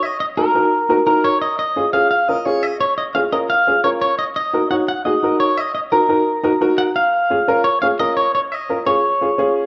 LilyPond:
<<
  \new Staff \with { instrumentName = "Clean electric guitar" } { \time 4/4 \key des \mixolydian \tempo 4 = 173 ees''8 ees''8 bes'2 bes'8 des''8 | ees''8 ees''4 f''8 f''8 ees''8 des''8 ees''8 | des''8 ees''8 f''8 ees''8 f''4 des''8 des''8 | ees''8 ees''4 ges''8 ges''8 ees''4 des''8 |
ees''8 ees''8 bes'2~ bes'8 ges''8 | f''2 des''8 f''8 ees''8 des''8 | des''8 ees''4 des''2 r8 | }
  \new Staff \with { instrumentName = "Upright piano" } { \time 4/4 \key des \mixolydian r4 <ees' ges' bes'>8 <ees' ges' bes'>8 r8 <ees' ges' bes'>8 <ees' ges' bes'>8 r8 | r4 <des' f' aes'>8 <des' f' aes'>8 r8 <des' f' bes'>8 <des' f' aes'>8 r8 | r4 <des' f' aes'>8 <des' f' bes'>8 r8 <des' f' aes'>8 <des' f' bes'>8 r8 | r4 <ees' ges' bes'>8 <ees' ges' des''>8 r8 <ees' ges' aes'>8 <ees' ges' bes'>8 r8 |
r4 <ees' ges' bes'>8 <ees' ges' bes'>8 r8 <ees' ges' bes'>8 <ees' ges' bes'>8 r8 | r4 <des' f' aes'>8 <des' f' bes'>8 r8 <des' f' aes'>8 <des' f' bes'>8 r8 | r4 <des' f' bes'>8 <des' f' aes'>8 r8 <des' f' aes'>8 <des' f' aes'>8 r8 | }
>>